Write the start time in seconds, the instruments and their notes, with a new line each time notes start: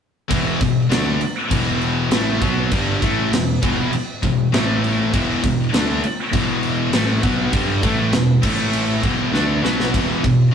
0.28 picked electric bass E1, distorted electric guitar E2 B2 E3, kick, crash
0.61 picked electric bass E1, distorted electric guitar E2 B2, kick, crash
0.89 picked electric bass D2, distorted electric guitar D3 A3 D4, snare, crash
1.20 muted picked electric bass stroke, muted distorted electric guitar stroke, crash
1.50 picked electric bass E1, distorted electric guitar E2 B2 E3, kick, crash
1.82 crash
2.11 picked electric bass A1, distorted electric guitar A2 E3 A3, snare, crash
2.41 picked electric bass B1, distorted electric guitar B2 F#3 B3, kick, crash
2.71 picked electric bass G1, distorted electric guitar G2 D3 G3, kick, crash
3.02 picked electric bass A1, distorted electric guitar A2 E3 A3, kick, crash
3.32 picked electric bass E1, distorted electric guitar E2 B2, snare, crash
3.62 picked electric bass E1, distorted electric guitar E2 B2 E3, kick, crash
3.93 muted picked electric bass stroke, muted distorted electric guitar stroke, crash
4.23 picked electric bass E1, distorted electric guitar E2 B2, kick, crash
4.51 picked electric bass A1, distorted electric guitar A2 E3 A3, snare, crash
4.84 crash
5.12 picked electric bass E1, distorted electric guitar E2 B2 E3, kick, crash
5.43 picked electric bass E1, distorted electric guitar E2 B2, kick, crash
5.73 picked electric bass D2, distorted electric guitar D3 A3 D4, snare, crash
6.02 muted distorted electric guitar stroke, muted picked electric bass stroke, crash
6.33 picked electric bass E1, distorted electric guitar E2 B2 E3, kick, crash
6.63 crash
6.92 picked electric bass A1, distorted electric guitar A2 E3 A3, snare, crash
7.22 picked electric bass B1, distorted electric guitar B2 F#3 B3, kick, crash
7.52 picked electric bass G1, distorted electric guitar G2 D3 G3, kick, crash
7.82 picked electric bass A1, distorted electric guitar A2 E3 A3, kick, crash
8.12 picked electric bass E1, distorted electric guitar E2 B2, snare, crash
8.42 picked electric bass A1, distorted electric guitar A2 E3 A3, kick, crash
8.73 crash
9.03 picked electric bass E1, distorted electric guitar E2 B2 E3, kick, crash
9.32 picked electric bass D2, distorted electric guitar D3 A3 D4, snare
9.63 picked electric bass B1, distorted electric guitar B2 F#3 B3, snare
9.80 snare
9.92 picked electric bass E1, distorted electric guitar E2 B2 E3, kick, splash, crash
10.22 picked electric bass E1, distorted electric guitar E2 B2, kick, crash
10.51 distorted electric guitar D3